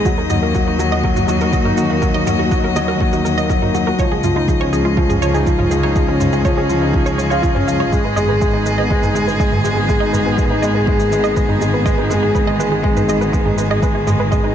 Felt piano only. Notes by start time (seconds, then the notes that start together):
0.05 F#3
0.18 D#4
0.30 F#3
0.42 A#3
0.55 F#3
0.67 D#4
0.79 F#3
0.91 F#4
1.04 F#3
1.16 F#3
1.28 F#3
1.41 F#4
1.53 F#3
1.65 D#4
1.77 F#3
1.90 A#3
2.02 F#3
2.15 D#4
2.27 F#3
2.39 F#4
2.52 F#3
2.64 F#3
2.76 F#3
2.88 F#4
3.01 F#3
3.13 D#4
3.25 F#3
3.38 A#3
3.49 F#3
3.62 D#4
3.74 F#3
3.87 F#4
3.99 F3
4.11 F3
4.23 F3
4.36 D#4
4.48 F3
4.60 C#4
4.73 F3
4.85 G#3
4.97 F3
5.09 C#4
5.22 F3
5.34 D#4
5.46 F3
5.59 F3
5.71 F3
5.83 D#4
5.96 F3
6.08 C#4
6.21 F3
6.33 G#3
6.45 F3
6.58 C#4
6.70 F3
6.82 D#4
6.94 F3
7.07 F3
7.19 F3
7.31 F4
7.43 F3
7.56 C#4
7.68 F3
7.81 F3
7.93 G#3
8.05 G#3
8.17 G#3
8.29 G#4
8.41 G#3
8.53 D#4
8.66 G#3
8.78 B3
8.91 G#3
9.03 D#4
9.15 G#3
9.27 G#4
9.39 G#3
9.52 G#3
9.65 G#3
9.77 G#4
9.89 G#3
10.02 D#4
10.13 G#3
10.26 B3
10.38 G#3
10.50 D#4
10.63 G#3
10.76 G#4
10.88 G#3
11.00 G#3
11.12 G#3
11.24 G#4
11.36 G#3
11.49 D#4
11.61 G#3
11.73 B3
11.85 G#3
11.98 D#4
12.10 G#3
12.22 G#4
12.34 G#3
12.47 G#3
12.59 G#3
12.71 G#4
12.83 G#3
12.96 D#4
13.08 G#3
13.20 B3
13.32 G#3
13.45 D#4
13.57 G#3
13.70 G#4
13.82 G#3
13.94 G#3
14.07 G#3
14.19 G#4
14.31 G#3
14.43 D#4